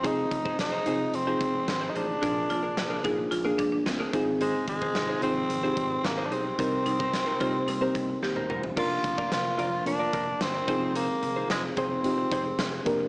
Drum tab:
CC |----------------|----------------|----------------|----------------|
HH |x-x-x-x-x-x-x-x-|x-x-x-x-x-x-x-x-|x-x-x-x-x-x-x-x-|x-x-x-x-x-x-----|
SD |----o-------o---|----o-------o---|----o-------o---|----o-------o---|
T1 |----------------|----------------|----------------|-------------o--|
T2 |----------------|----------------|----------------|--------------o-|
FT |----------------|----------------|----------------|---------------o|
BD |o-oo------o-----|o-----o---o---o-|--oo------o-----|o--o--o---o-----|

CC |x---------------|----------------|
HH |--x-x-x-x-x-x-x-|x-x-x-x-x-x-x-x-|
SD |----o-------o---|----o-------o---|
T1 |----------------|----------------|
T2 |----------------|----------------|
FT |----------------|----------------|
BD |o-oo------o---o-|------o---o---o-|